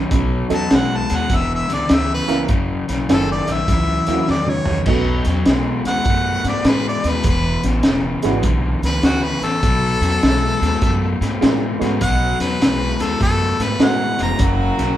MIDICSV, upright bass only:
0, 0, Header, 1, 2, 480
1, 0, Start_track
1, 0, Tempo, 595238
1, 86, Time_signature, 4, 2, 24, 8
1, 12074, End_track
2, 0, Start_track
2, 0, Title_t, "Upright bass"
2, 0, Program_c, 0, 32
2, 90, Note_on_c, 0, 35, 89
2, 332, Note_off_c, 0, 35, 0
2, 406, Note_on_c, 0, 40, 87
2, 532, Note_off_c, 0, 40, 0
2, 574, Note_on_c, 0, 35, 90
2, 814, Note_off_c, 0, 35, 0
2, 894, Note_on_c, 0, 39, 77
2, 1017, Note_off_c, 0, 39, 0
2, 1047, Note_on_c, 0, 28, 83
2, 1290, Note_off_c, 0, 28, 0
2, 1373, Note_on_c, 0, 37, 80
2, 1496, Note_off_c, 0, 37, 0
2, 1530, Note_on_c, 0, 38, 82
2, 1772, Note_off_c, 0, 38, 0
2, 1845, Note_on_c, 0, 37, 76
2, 1971, Note_off_c, 0, 37, 0
2, 2010, Note_on_c, 0, 30, 83
2, 2252, Note_off_c, 0, 30, 0
2, 2330, Note_on_c, 0, 35, 74
2, 2454, Note_off_c, 0, 35, 0
2, 2491, Note_on_c, 0, 30, 95
2, 2733, Note_off_c, 0, 30, 0
2, 2807, Note_on_c, 0, 34, 82
2, 2933, Note_off_c, 0, 34, 0
2, 2968, Note_on_c, 0, 37, 93
2, 3211, Note_off_c, 0, 37, 0
2, 3285, Note_on_c, 0, 39, 83
2, 3412, Note_off_c, 0, 39, 0
2, 3457, Note_on_c, 0, 40, 86
2, 3696, Note_off_c, 0, 40, 0
2, 3761, Note_on_c, 0, 37, 76
2, 3890, Note_off_c, 0, 37, 0
2, 3921, Note_on_c, 0, 35, 91
2, 4167, Note_off_c, 0, 35, 0
2, 4243, Note_on_c, 0, 40, 87
2, 4371, Note_off_c, 0, 40, 0
2, 4405, Note_on_c, 0, 35, 89
2, 4649, Note_off_c, 0, 35, 0
2, 4721, Note_on_c, 0, 39, 87
2, 4850, Note_off_c, 0, 39, 0
2, 4882, Note_on_c, 0, 42, 81
2, 5127, Note_off_c, 0, 42, 0
2, 5196, Note_on_c, 0, 44, 82
2, 5327, Note_off_c, 0, 44, 0
2, 5358, Note_on_c, 0, 45, 83
2, 5605, Note_off_c, 0, 45, 0
2, 5679, Note_on_c, 0, 39, 72
2, 5808, Note_off_c, 0, 39, 0
2, 5840, Note_on_c, 0, 28, 97
2, 6087, Note_off_c, 0, 28, 0
2, 6159, Note_on_c, 0, 33, 91
2, 6289, Note_off_c, 0, 33, 0
2, 6321, Note_on_c, 0, 28, 94
2, 6568, Note_off_c, 0, 28, 0
2, 6639, Note_on_c, 0, 32, 90
2, 6769, Note_off_c, 0, 32, 0
2, 6806, Note_on_c, 0, 35, 86
2, 7050, Note_off_c, 0, 35, 0
2, 7114, Note_on_c, 0, 37, 83
2, 7246, Note_off_c, 0, 37, 0
2, 7278, Note_on_c, 0, 38, 89
2, 7526, Note_off_c, 0, 38, 0
2, 7591, Note_on_c, 0, 33, 71
2, 7724, Note_off_c, 0, 33, 0
2, 7761, Note_on_c, 0, 35, 93
2, 8008, Note_off_c, 0, 35, 0
2, 8071, Note_on_c, 0, 40, 94
2, 8204, Note_off_c, 0, 40, 0
2, 8246, Note_on_c, 0, 35, 97
2, 8491, Note_off_c, 0, 35, 0
2, 8561, Note_on_c, 0, 39, 87
2, 8690, Note_off_c, 0, 39, 0
2, 8722, Note_on_c, 0, 42, 91
2, 8968, Note_off_c, 0, 42, 0
2, 9039, Note_on_c, 0, 44, 92
2, 9169, Note_off_c, 0, 44, 0
2, 9215, Note_on_c, 0, 45, 89
2, 9456, Note_off_c, 0, 45, 0
2, 9523, Note_on_c, 0, 44, 83
2, 9651, Note_off_c, 0, 44, 0
2, 9688, Note_on_c, 0, 35, 102
2, 9931, Note_off_c, 0, 35, 0
2, 9998, Note_on_c, 0, 40, 83
2, 10128, Note_off_c, 0, 40, 0
2, 10167, Note_on_c, 0, 35, 87
2, 10411, Note_off_c, 0, 35, 0
2, 10484, Note_on_c, 0, 39, 88
2, 10611, Note_off_c, 0, 39, 0
2, 10654, Note_on_c, 0, 42, 86
2, 10894, Note_off_c, 0, 42, 0
2, 10962, Note_on_c, 0, 44, 89
2, 11090, Note_off_c, 0, 44, 0
2, 11123, Note_on_c, 0, 45, 90
2, 11367, Note_off_c, 0, 45, 0
2, 11445, Note_on_c, 0, 29, 82
2, 11571, Note_off_c, 0, 29, 0
2, 11605, Note_on_c, 0, 30, 87
2, 11848, Note_off_c, 0, 30, 0
2, 11923, Note_on_c, 0, 35, 92
2, 12049, Note_off_c, 0, 35, 0
2, 12074, End_track
0, 0, End_of_file